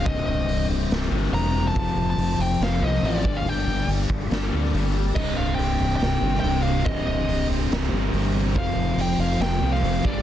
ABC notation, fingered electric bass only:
X:1
M:4/4
L:1/8
Q:1/4=141
K:Cdor
V:1 name="Fingered electric bass" clef=bass
C,,, C,,, C,,, C,,, C,,, G,,, =E,,,2 | F,,, F,,, F,,, F,,, F,,, C,, A,,, G,,, | G,,, G,,, G,,, G,,, G,,, D,, G,,,2 | C,,, C,,, C,,, C,,, C,,, G,,, C,,,2 |
C,,, C,,, C,,, C,,, C,,, G,,, G,,,2 | F,,, F,,, F,,, F,,, F,,, C,, F,,, G,,, |]